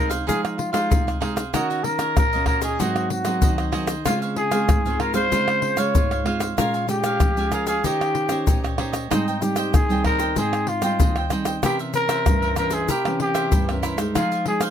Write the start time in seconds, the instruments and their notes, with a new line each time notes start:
Already playing: nylon-string guitar C3 G#3 D#4 G4
0.10 cavaquinho G#4 C5 F5, pandeiro, shaker
0.27 nylon-string guitar F3 G#3 D#4, cavaquinho D#4 G#4 C5 F5, trumpet G#4, pandeiro, shaker, surdo
0.45 pandeiro, tamborim, shaker
0.57 trumpet F4, muted cavaquinho stroke, pandeiro
0.72 nylon-string guitar G#3 D#4 G4, trumpet F4, cavaquinho G#4 C5 F5, pandeiro, tamborim, shaker
0.90 nylon-string guitar C3, cavaquinho D#4 G#4 C5 F5, pandeiro, shaker, surdo
1.07 cavaquinho G#4 C5 F5, pandeiro, tamborim, shaker
1.21 nylon-string guitar G#3 D#4 G4, cavaquinho D#4 G#4 C5 F5, pandeiro, tamborim
1.36 cavaquinho G#4 C5 F5, pandeiro, tamborim, shaker
1.53 nylon-string guitar D#3 A#3 C#4 F#4, cavaquinho F#4 A#4 C#5 D#5, trumpet F#4, pandeiro, tamborim, shaker, surdo
1.70 cavaquinho A#4 C#5 D#5, pandeiro, shaker
1.84 nylon-string guitar A#3 C#4 F#4, trumpet A#4, muted cavaquinho stroke, pandeiro
1.99 cavaquinho A#4 C#5 D#5, pandeiro, tamborim, shaker
2.17 nylon-string guitar A#2, trumpet A#4, pandeiro, tamborim, shaker, surdo
2.33 nylon-string guitar A#3 C#4 F#4, cavaquinho A#4 C#5 D#5, pandeiro, shaker
2.46 cavaquinho F#4 A#4 C#5 D#5, trumpet A#4, pandeiro, tamborim, surdo
2.62 trumpet G#4, cavaquinho A#4 C#5 D#5, pandeiro, shaker
2.79 nylon-string guitar G#2 F#3 A#3 C4, cavaquinho F#4 G#4 C5 D#5, trumpet F#4, pandeiro, shaker, surdo
2.96 pandeiro, tamborim, shaker
3.10 trumpet F#4, muted cavaquinho stroke, pandeiro
3.25 nylon-string guitar F#3 A#3 C4, cavaquinho G#4 C5 D#5, pandeiro, tamborim, shaker
3.42 nylon-string guitar D#3, cavaquinho F#4 G#4 C5 D#5, pandeiro, shaker, surdo
3.58 cavaquinho G#4 C5 D#5, pandeiro, tamborim, shaker
3.72 nylon-string guitar F#3 A#3 C4, cavaquinho F#4 G#4 C5 D#5, pandeiro, tamborim
3.87 cavaquinho G#4 C5 D#5, pandeiro, tamborim, shaker
4.05 nylon-string guitar C#3 G#3 C4 F4, cavaquinho F4 C5 C#5 F5, trumpet F4, pandeiro, tamborim, shaker, surdo
4.22 cavaquinho C5 C#5 F5, pandeiro, shaker
4.36 trumpet G#4, muted cavaquinho stroke, pandeiro
4.51 nylon-string guitar G#3 C4 F4, cavaquinho C5 C#5 F5, pandeiro, tamborim, shaker
4.69 nylon-string guitar G#2, pandeiro, tamborim, shaker, surdo
4.85 nylon-string guitar G#3 C4 F4, cavaquinho C5 C#5 F5, pandeiro, shaker
5.00 cavaquinho F4 C5 C#5 F5, trumpet A#4, pandeiro, tamborim
5.14 nylon-string guitar G#3 C4 F4, trumpet C5, cavaquinho C5 C#5 F5, pandeiro, shaker
5.32 nylon-string guitar C#3 G#3 C4 F4, cavaquinho F4 C5 F5, pandeiro, shaker, surdo
5.48 pandeiro, tamborim, shaker
5.62 muted cavaquinho stroke, pandeiro
5.77 nylon-string guitar G#3 F4, cavaquinho C5 C#5 F5, trumpet C#5, pandeiro, tamborim, shaker
5.95 nylon-string guitar G#2, cavaquinho F4 C5 C#5 F5, pandeiro, shaker, surdo
6.11 cavaquinho C5 C#5 F5, pandeiro, tamborim, shaker
6.26 nylon-string guitar G#3 C4 F4, cavaquinho F4 C5 C#5 F5, pandeiro, tamborim
6.40 cavaquinho C5 C#5 F5, pandeiro, tamborim, shaker
6.56 nylon-string guitar A#2 G#3 C#4 F4, trumpet F4, cavaquinho A#4 C#5 F5 G#5, pandeiro, tamborim, shaker, surdo
6.74 cavaquinho C#5 F5 G#5, pandeiro, shaker
6.87 nylon-string guitar G#3 C#4 F4, trumpet G4, muted cavaquinho stroke, pandeiro, shaker
7.04 cavaquinho C#5 F5, pandeiro, tamborim, shaker
7.20 nylon-string guitar F3, pandeiro, tamborim, shaker, surdo
7.37 nylon-string guitar G#3 C#4 F4, cavaquinho C#5 F5 G#5, pandeiro, shaker
7.52 trumpet G#4, cavaquinho A#4 C#5 F5 G#5, pandeiro, tamborim, shaker
7.67 trumpet G#4, cavaquinho C#5 F5 G#5, pandeiro, shaker
7.84 nylon-string guitar D#3 C#4 G4 C5, cavaquinho D#4 G4 C#5 D#5, trumpet G4, pandeiro, shaker, surdo
8.01 pandeiro, tamborim, shaker
8.15 muted cavaquinho stroke, pandeiro
8.29 nylon-string guitar C#4 G4 C5, cavaquinho G4 C#5 D#5, pandeiro, tamborim, shaker
8.47 nylon-string guitar A#2, cavaquinho D#4 G4 C#5 D#5, pandeiro, shaker, surdo
8.64 cavaquinho G4 C#5 D#5, pandeiro, tamborim, shaker
8.78 nylon-string guitar C#4 G4 C5, cavaquinho D#4 G4 C#5 D#5, pandeiro, tamborim
8.93 cavaquinho G4 C#5 D#5, pandeiro, tamborim, shaker
9.11 nylon-string guitar G#2 G3 C4 D#4, trumpet D#4, cavaquinho G#4 C5 D#5 G5, pandeiro, tamborim, shaker, surdo
9.28 cavaquinho C5 D#5 G5, pandeiro, shaker
9.41 nylon-string guitar G3 C4 D#4, trumpet G4, muted cavaquinho stroke, pandeiro, shaker
9.56 cavaquinho C5 D#5 G5, pandeiro, tamborim, shaker
9.73 nylon-string guitar D#3, trumpet G#4, pandeiro, tamborim, shaker, surdo
9.89 nylon-string guitar G3 C4 D#4, cavaquinho C5 D#5 G5, pandeiro, shaker
10.04 cavaquinho G#4 C5 D#5 G5, trumpet A#4, pandeiro, tamborim, surdo
10.19 cavaquinho C5 D#5 G5, pandeiro, shaker
10.36 nylon-string guitar G#2 C4 D#4, cavaquinho G#4 C5 D#5 G5, trumpet G#4, pandeiro, shaker, surdo
10.53 pandeiro, tamborim, shaker
10.67 trumpet F4, muted cavaquinho stroke, pandeiro
10.82 nylon-string guitar G3 C4 D#4, trumpet F4, cavaquinho C5 D#5 G5, pandeiro, tamborim, shaker
11.00 nylon-string guitar D#3, cavaquinho G#4 C5 D#5 G5, pandeiro, shaker, surdo
11.16 cavaquinho C5 D#5 G5, pandeiro, tamborim, shaker
11.30 nylon-string guitar G3 C4 D#4, cavaquinho G#4 C5 D#5 G5, pandeiro, tamborim, shaker
11.45 cavaquinho C5 D#5 G5, pandeiro, tamborim, shaker
11.63 nylon-string guitar C3 E3 A#3 C#4, cavaquinho E4 A#4 C5 E5, trumpet G4, pandeiro, tamborim, shaker, surdo
11.79 cavaquinho A#4 C5 E5, pandeiro, shaker
11.94 trumpet A#4, muted cavaquinho stroke, pandeiro, shaker
12.09 cavaquinho A#4 C5 E5, pandeiro, tamborim, shaker
12.26 nylon-string guitar G2 E3 A#3 C#4, pandeiro, tamborim, shaker, surdo
12.42 cavaquinho A#4 C5 E5, pandeiro, shaker
12.56 nylon-string guitar E3 A#3 C#4, cavaquinho E4 A#4 C5 E5, trumpet A#4, pandeiro, tamborim, shaker
12.70 trumpet G#4, cavaquinho A#4 C5 E5, pandeiro, shaker
12.88 nylon-string guitar C3, cavaquinho E4 A#4 C5 E5, trumpet G4, pandeiro, shaker, surdo
13.05 nylon-string guitar E3 A#3 C#4, pandeiro, tamborim, shaker
13.20 trumpet G4, muted cavaquinho stroke, pandeiro
13.34 cavaquinho A#4 C5 E5, pandeiro, tamborim, shaker
13.52 nylon-string guitar G2, cavaquinho E4 A#4 C5 E5, pandeiro, shaker, surdo
13.69 nylon-string guitar E3 A#3 C#4, cavaquinho A#4 C5 E5, pandeiro, tamborim, shaker
13.83 cavaquinho E4 A#4 C5 E5, pandeiro, tamborim, shaker
13.98 nylon-string guitar G#3 D#4 G4, cavaquinho A#4 C5 E5, pandeiro, tamborim, shaker
14.15 nylon-string guitar F3, cavaquinho D#4 G#4 C5 F5, trumpet F4, pandeiro, tamborim, shaker, surdo
14.32 cavaquinho G#4 C5 F5, pandeiro, shaker
14.46 nylon-string guitar G#3 D#4, trumpet G#4, muted cavaquinho stroke, pandeiro
14.61 cavaquinho G#4 C5 F5, pandeiro, tamborim, shaker